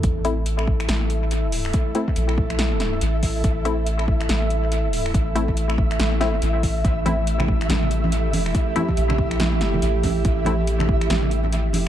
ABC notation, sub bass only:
X:1
M:4/4
L:1/8
Q:"Swing 16ths" 1/4=141
K:Cmix
V:1 name="Sub bass" clef=bass
A,,,4 A,,,4 | z2 B,,,4 A,,,2 | A,,,4 A,,,4 | A,,,4 A,,,2 A,,,2 |
A,,,4 A,,,4 | z2 B,,,4 A,,,2 | A,,,4 A,,,4 |]